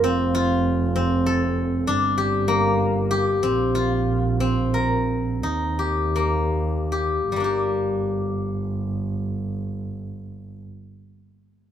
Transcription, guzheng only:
\new Staff \with { instrumentName = "Guzheng" } { \time 11/8 \key g \minor \tempo 4 = 86 c'8 f'4 c'8 a'4 d'8 g'8 bes4 g'8 | c'8 f'4 c'8 bes'4 ees'8 g'8 bes4 g'8 | <g bes d' g'>1~ <g bes d' g'>4. | }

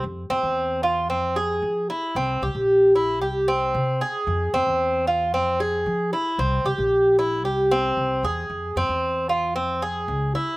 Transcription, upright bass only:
\new Staff \with { instrumentName = "Upright bass" } { \clef bass \time 4/4 \key f \minor \tempo 4 = 114 f,8 f,16 e,4~ e,16 f,4 f8 r8 | c,8 c,16 bes,,4~ bes,,16 c,4 c8 r8 | f,8 f,16 e,4~ e,16 f,4 f8 r8 | c,8 c,16 bes,,4~ bes,,16 c,4 c,8 e,8 |
f,8 f,16 e,4~ e,16 f,4 des,8 r8 | }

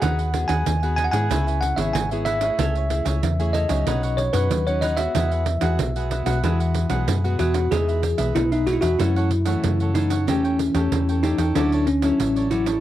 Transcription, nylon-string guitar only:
\new Staff \with { instrumentName = "Nylon-string guitar" } { \time 4/4 \key e \major \tempo 4 = 94 << { <b fis' gis'>8 <b fis' gis'>8 r16 <b fis' gis'>8 <b e' gis'>4 <b e' gis'>8 <b e' gis'>8 <a e' gis'>16~ | <a e' gis'>8 <a e' gis'>8 r16 <a e' gis'>8 <fis cis' dis'>4 <fis cis' dis'>8 <fis cis' dis'>8 <gis b fis'>16~ | <gis b fis'>8 r16 <gis b fis'>8 <gis b fis'>8 <gis b fis'>16 <gis b fis'>8. <gis b fis'>8 <gis b fis'>8. | <gis b dis'>8 r16 <gis b>8. <gis b dis'>16 r16 <e a cis'>8 r16 <e a cis'>8. <e a cis'>16 r16 |
<a cis' g'>8. <a cis' g'>8. <a cis' g'>16 r16 <fis cis' e'>8 r16 <fis cis' e'>8. <fis cis' e'>16 r16 | } \\ { dis4 dis4 cis4 gis,4 | cis4 cis4 b,4 fis4 | e4 b,4 e4 b,4 | e4 b,4 fis,4 cis4 |
e4 e4 d4 a,4 | } >> }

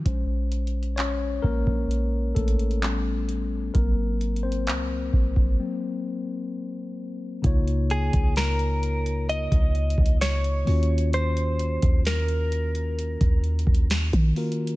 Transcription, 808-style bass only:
\new Staff \with { instrumentName = "808-style bass" } { \clef bass \time 4/4 \key des \major \tempo 4 = 65 bes,,4. bes,,16 bes,,8. a,,4. | aes,,4 c,8 aes,,16 aes,,16 r2 | des,8. des,4. des,8 des,8. ees,8~ | ees,8. ees,4. ees,8 ees,8 ees8. | }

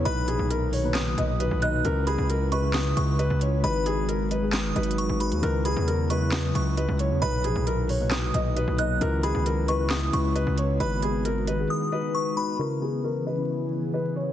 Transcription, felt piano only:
\new Staff \with { instrumentName = "Felt piano" } { \time 4/4 \key cis \dorian \tempo 4 = 134 b'8 gis'8 ais'8 cis''8 r8 dis''8 b'8 dis''8 | ais'8 gis'8 ais'8 b'4. b'8 cis''8 | b'8 gis'8 ais'8 b'8 r8 b'4. | ais'8 gis'8 ais'8 b'4. b'8 cis''8 |
b'8 gis'8 ais'8 cis''8 r8 dis''8 b'8 dis''8 | ais'8 gis'8 ais'8 b'4. b'8 cis''8 | b'8 gis'8 ais'8 b'8 r8 b'4. | ais'8 gis'8 ais'8 b'4. b'8 cis''8 | }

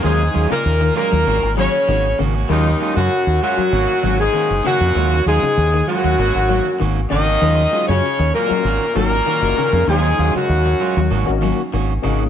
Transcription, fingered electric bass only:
\new Staff \with { instrumentName = "Fingered electric bass" } { \clef bass \time 4/4 \key ees \minor \tempo 4 = 98 ees,8 ees,16 r16 ees,8 r16 ees,16 aes,,16 aes,,8 r16 aes,,8 aes,,8 | ees,8 r16 ges,16 r16 ees,16 r8 aes,,16 r16 aes,,8 r16 ges,,16 r16 f,16 | ees,8 ees,16 r16 ees,8 r16 ees,16 aes,,16 aes,,8 r16 aes,,8 aes,,8 | ees,8 r16 ges,16 r16 ees,16 r8 aes,,16 r16 aes,,8 r16 ges,,16 r16 f,16 |
ees,8 ees,16 r16 ees,8 r16 ees,16 aes,,16 aes,,8 r16 aes,,8 aes,,8 | }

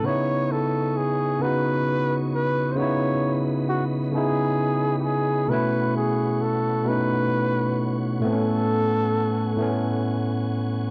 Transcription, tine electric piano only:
\new Staff \with { instrumentName = "Tine electric piano" } { \time 6/8 \key cis \minor \tempo 4. = 44 <cis b dis' e'>4. <cis b dis' fis'>4. | <cis b dis' e'>4. <cis b dis' e'>4. | <b, a cis' e'>4. <b, a cis' dis'>4. | <a, a b bis cis'>4. <a, a b cis'>4. | }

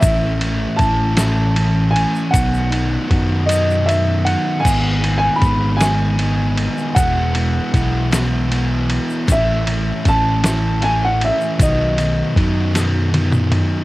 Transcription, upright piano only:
\new Staff \with { instrumentName = "Upright piano" } { \time 6/8 \key a \lydian \tempo 4. = 52 e''4 a''4. gis''8 | fis''4. dis''8 e''8 fis''8 | gis''8. gis''16 b''8 gis''4. | fis''4. r4. |
e''4 a''4 gis''16 fis''16 e''8 | dis''2~ dis''8 r8 | }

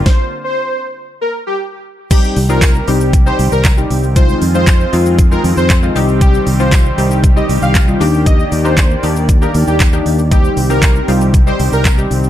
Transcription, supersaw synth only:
\new Staff \with { instrumentName = "Supersaw synth" } { \time 4/4 \key c \minor \tempo 4 = 117 c''8 r16 c''8. r8. bes'16 r16 g'16 r4 | g'8 r16 bes'8. r8. c''16 r16 bes'8 r8. | c''8 r16 c''8. r8. bes'16 r16 c''8 r8. | g'8 r16 c''8. r8. ees''16 r16 f''8 r8. |
ees''8 r16 c''8. r8. bes'16 r16 g'16 r4 | g'8 r16 bes'8. r8. c''16 r16 bes'8 r8. | }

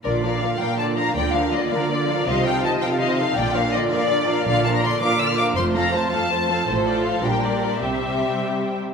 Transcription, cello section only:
\new Staff \with { instrumentName = "Cello section" } { \clef bass \time 6/8 \key bes \major \tempo 4. = 108 bes,4. bes,4. | d4. d4. | c4. c4. | bes,4. bes,4. |
\key f \major bes,4. bes,4. | f,4. f,4. | a,4. bes,4. | c2~ c8 r8 | }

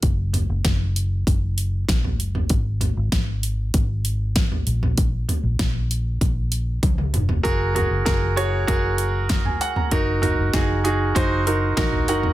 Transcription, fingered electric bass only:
\new Staff \with { instrumentName = "Fingered electric bass" } { \clef bass \time 4/4 \key ges \lydian \tempo 4 = 97 ges,,8. ges,,16 ges,,4 ges,,4 bes,,8 ges,,8 | aes,,8. aes,,16 aes,,4 aes,,4. bes,,8~ | bes,,8 r16 bes,,16 bes,,4 bes,,4 des,8 f,,8 | ges,,8. ges,,16 ges,,4 ges,,4. r8 |
ges,,8. ges,,16 ges,,4 ges,,4 bes,,8 ges,,8 | }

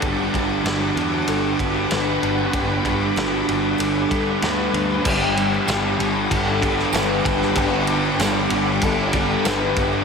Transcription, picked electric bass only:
\new Staff \with { instrumentName = "Picked electric bass" } { \clef bass \time 4/4 \key g \lydian \tempo 4 = 96 g,,8 g,,8 g,,8 e,8 g,,8 g,,8 g,,8 g,,8 | g,,8 g,,8 g,,8 g,,8 g,,8 g,8 d,8 d,8 | g,,4 g,,8 g,,8 g,,4 g,,8 g,,8 | g,,4 g,,8 g,,8 g,,4 g,,8 g,,8 | }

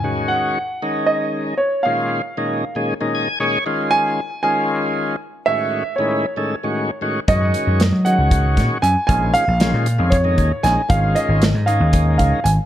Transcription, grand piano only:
\new Staff \with { instrumentName = "Grand piano" } { \time 7/8 \key fis \major \tempo 4 = 116 aes''8 fis''4. dis''4 cis''8 | eis''2 r4. | r8 gis''4 gis''4. r8 | e''4 cis''2 r8 |
dis''4. fis''4. gis''8 | gis''8 eis''4. cis''4 gis''8 | eis''8 dis''4 eis''4 eis''8 gis''8 | }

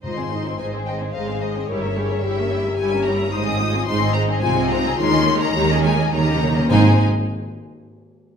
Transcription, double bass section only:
\new Staff \with { instrumentName = "Double bass section" } { \clef bass \time 3/4 \key aes \major \tempo 4 = 107 aes,,4 aes,,4 aes,,4 | g,,4 g,,4 g,,4 | aes,,4 aes,,4 c,4 | ees,4 ees,4 ees,4 |
aes,,8 r2 r8 | }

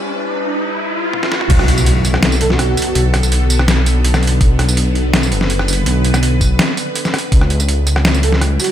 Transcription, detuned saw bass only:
\new Staff \with { instrumentName = "Detuned saw bass" } { \clef bass \time 4/4 \key b \minor \tempo 4 = 165 r1 | b,,2.~ b,,8 r8 | b,,8. b,,4~ b,,16 b,,2 | b,,8. b,,4.~ b,,16 fis,,4. |
b,,8. b,,4~ b,,16 r2 | cis,2.~ cis,8 r8 | }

